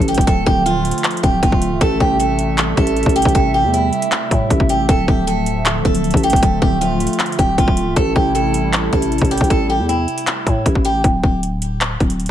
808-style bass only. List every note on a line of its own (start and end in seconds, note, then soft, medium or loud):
0.00 0.17 A1 loud
0.18 0.45 D1 loud
0.47 0.93 D1 loud
1.24 1.42 D1 loud
1.43 1.73 D1 loud
1.72 1.81 C1 loud
1.81 2.00 A1 loud
2.00 2.74 A1 loud
2.77 3.05 A1 loud
3.06 3.25 A1 loud
3.25 3.65 A1 loud
3.64 3.91 E2 loud
4.31 4.50 A2 loud
4.50 4.87 A1 loud
4.89 5.07 D1 loud
5.08 5.82 D1 loud
5.85 6.13 D1 loud
6.14 6.32 A1 loud
6.33 6.61 D1 loud
6.62 7.08 D1 loud
7.39 7.57 D1 loud
7.58 7.88 D1 loud
7.87 7.96 C1 loud
7.97 8.15 A1 loud
8.16 8.90 A1 loud
8.93 9.20 A1 loud
9.22 9.40 A1 loud
9.41 9.81 A1 loud
9.79 10.07 E2 loud
10.47 10.65 A2 loud
10.66 11.03 A1 loud
11.04 11.23 D1 loud
11.23 11.97 D1 loud
12.00 12.28 D1 loud